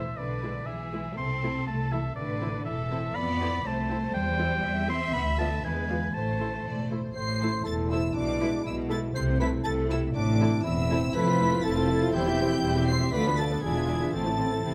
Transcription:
Already playing: harp A2 E3 E4 C5, violin section C5, oboe E5
0.17 double bass section B1, harp B2, cello section D3, violin section B4, oboe D5
0.42 harp G#3, viola section G#3 E4, violin section B4
0.66 double bass section B1, cello section E3, harp E4, violin section G#4, oboe E5
0.93 viola section G#3 E4, violin section B4, harp B4
1.17 double bass section C2, harp C3, cello section C4, violin section A4, oboe C6
1.41 viola section A3 E4, harp C4, violin section A4
1.66 double bass section C2, cello section A3, harp E4, oboe A5
1.91 cello section E3, viola section A3 E4, violin section A4, harp A4, oboe E5
2.16 double bass section A1, harp A2, cello section D3, violin section B4, oboe D5
2.40 harp E3, viola section C4 E4, violin section A4
2.65 double bass section E1, cello section E3, harp E4, violin section A4, oboe E5
2.91 viola section C4 E4, violin section A4, harp C5
3.15 double bass section F2, harp F3, cello section B3, violin section D5, oboe B5
3.40 harp C4, viola section C4 E4, violin section A4
3.64 double bass section C2, cello section A3, harp A4, violin section C5, oboe A5
3.89 viola section C4 E4, violin section A4, harp E5
4.14 double bass section E2, harp E3, cello section G3, oboe G5
4.38 viola section C4 E4, harp C4, violin section C5
4.64 double bass section E2, harp C5, violin section E5
4.88 viola section C4 E4, cello section C4, violin section C5, harp E5, oboe C6
5.14 double bass section D2, harp D3, cello section B3, oboe B5
5.39 cello section A3, viola section B3 F4, harp F4 B4, violin section D5, oboe A5
5.64 double bass section E2, harp E3, cello section G#3, violin section B4, oboe G#5
5.88 viola section B3 F4, harp F4 B4, violin section D5
6.14 double bass section A1, harp A2, cello section A3, violin section C5, oboe A5
6.39 harp E3, viola section A3 E4, violin section C5
6.65 double bass section E1, harp E4, violin section D5
6.91 viola section A3 E4, violin section C5, harp C5
7.15 double bass section A1, harp A2, cello section A2, french horn section A3 E4, clarinet C5, flute section C6, violin section C7
7.40 harp E3, viola section A3 E4, violin section A4 C5
7.65 double bass section E1, cello section E2, harp E4, clarinet A4, flute section A5, violin section A6
7.89 viola section A3 E4, clarinet E4, violin section A4 C5 E6, harp C5, flute section E5
8.14 double bass section B1, cello section B2, harp B2, french horn section G#3, clarinet D4, flute section D5, violin section D6
8.40 harp G#3, viola section G#3 E4, violin section E4 B4
8.64 double bass section B1, cello section B2, clarinet E4, harp E4, flute section E5, violin section E6
8.88 viola section G#3 E4, violin section E4 B4 A6, clarinet A4, harp B4, flute section A5
9.14 double bass section C2, harp C3, cello section C3, french horn section A3 E4, clarinet C5, flute section C6, violin section C7
9.40 viola section A3 E4, violin section E4 A4 B6, clarinet B4, flute section B5
9.63 double bass section C2, cello section C3, harp E4, clarinet A4, flute section A5, violin section A6
9.89 viola section A3 E4, clarinet E4, violin section E4 A4 E6, harp A4, flute section E5
10.14 double bass section A1, cello section A2, harp A2, french horn section C4, clarinet D4, flute section D5, violin section D6
10.40 harp E3, viola section C4 E4, violin section E4 A4
10.63 double bass section E1, cello section E2, clarinet E4, harp E4, flute section E5, violin section E6
10.90 viola section C4 E4, violin section E4 A4, harp C5
11.14 double bass section F1, cello section F2, harp F3, viola section A3 E4, violin section E4 A4 B6, french horn section E4, clarinet B4, flute section B5
11.26 viola section C4 F4, violin section F4 C5
11.40 viola section A3 E4, harp C4, violin section E4 A4
11.51 viola section C4 F4, violin section F4 C5
11.63 double bass section F1, cello section F2, viola section A3 E4, violin section E4 A4 A6, clarinet A4, harp A4, flute section A5
11.76 viola section C4 F4, violin section F4 C5
11.88 viola section A3 E4, violin section E4 A4, harp E5
12.00 viola section C4 F4, violin section F4 C5
12.13 double bass section E1, cello section E2, harp E3, viola section G3 E4, french horn section C4, violin section E4 C5 G6, clarinet G4, flute section G5
12.25 violin section G4 E5, viola section G4
12.29 viola section C4
12.39 viola section G3 E4, harp C4, violin section E4 C5
12.51 viola section C4 G4, violin section G4 E5
12.63 double bass section E1, cello section E2, viola section G3 E4, violin section E4 C5, harp C5
12.75 viola section C4 G4, violin section G4 E5
12.87 viola section G3 E4, violin section E4 C5 C7, clarinet C5, harp E5, flute section C6
13.00 viola section C4 G4, violin section G4 E5
13.12 double bass section D2, cello section D2, harp D3, viola section A3 F4, french horn section D4 F4, clarinet B4, violin section B4 D5 B6, flute section B5
13.25 viola section B3 D4, violin section A4 B4
13.37 viola section A3 F4, harp F4, clarinet A4, violin section B4 D5 A6, flute section A5
13.50 viola section B3 D4, violin section A4 B4
13.62 double bass section E1, cello section E2, harp E3, viola section G#3 E4, french horn section D4 F4, violin section D4 D5 G#6, clarinet G#4, flute section G#5
13.75 viola section B3 D4, violin section F4 E5
13.89 viola section G#3 E4, violin section D4 D5, harp F4 B4
14.01 viola section B3 D4, violin section F4 E5
14.13 double bass section A1, cello section A2, harp A2, violin section C4 C5 A6, french horn section C4 E4, viola section C4 E4, clarinet A4, flute section A5
14.26 viola section A3 C4, violin section E4 A4
14.39 harp E3, viola section C4 E4, violin section C4 C5
14.52 viola section A3 C4, violin section E4 A4
14.65 double bass section A1, cello section C3, viola section C4 E4, violin section C4 C5, harp E4

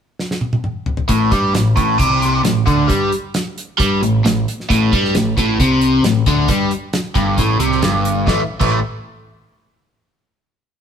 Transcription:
0.19 snare
0.31 snare
0.41 high tom
0.53 high tom
0.64 mid tom
0.86 floor tom
0.97 floor tom
1.09 picked electric bass A1, overdriven electric guitar A2, kick, closed hi-hat
1.32 picked electric bass G2, overdriven electric guitar G3, kick, closed hi-hat
1.53 picked electric bass A1, overdriven electric guitar A2, snare, closed hi-hat
1.76 picked electric bass A1, overdriven electric guitar A2, kick, closed hi-hat
1.98 picked electric bass C2, overdriven electric guitar C3, kick, closed hi-hat
2.22 closed hi-hat
2.44 picked electric bass A1, overdriven electric guitar A2, snare, closed hi-hat
2.66 picked electric bass D2, overdriven electric guitar D3, kick, closed hi-hat
2.88 picked electric bass G2, overdriven electric guitar G3, kick, closed hi-hat
3.12 closed hi-hat
3.34 snare, closed hi-hat
3.58 closed hi-hat
3.78 picked electric bass G2, overdriven electric guitar G3, kick, closed hi-hat
4.01 picked electric bass A1, overdriven electric guitar A2, closed hi-hat
4.24 picked electric bass A1, overdriven electric guitar A2, snare, closed hi-hat
4.48 closed hi-hat
4.60 snare
4.70 picked electric bass A1, overdriven electric guitar A2, kick, closed hi-hat
4.93 picked electric bass G2, overdriven electric guitar G3, kick, closed hi-hat
5.04 snare
5.15 picked electric bass A1, overdriven electric guitar A2, snare, closed hi-hat
5.37 picked electric bass A1, overdriven electric guitar A2, kick, closed hi-hat
5.60 picked electric bass C2, overdriven electric guitar C3, kick, closed hi-hat
5.81 closed hi-hat
6.03 picked electric bass A1, overdriven electric guitar A2, snare, closed hi-hat
6.26 picked electric bass D2, overdriven electric guitar D3, kick, closed hi-hat
6.48 picked electric bass G2, overdriven electric guitar G3, kick, closed hi-hat
6.71 closed hi-hat
6.93 snare, closed hi-hat
7.15 picked electric bass G1, overdriven electric guitar G2, kick, closed hi-hat
7.38 picked electric bass A1, overdriven electric guitar A2, kick, closed hi-hat
7.59 picked electric bass C2, overdriven electric guitar C3, closed hi-hat
7.72 snare
7.82 picked electric bass G1, overdriven electric guitar G2, snare, closed hi-hat
8.05 closed hi-hat
8.27 picked electric bass A1, overdriven electric guitar A2 E3 A3, kick, snare
8.60 picked electric bass A1, overdriven electric guitar A2 E3 A3, kick, crash

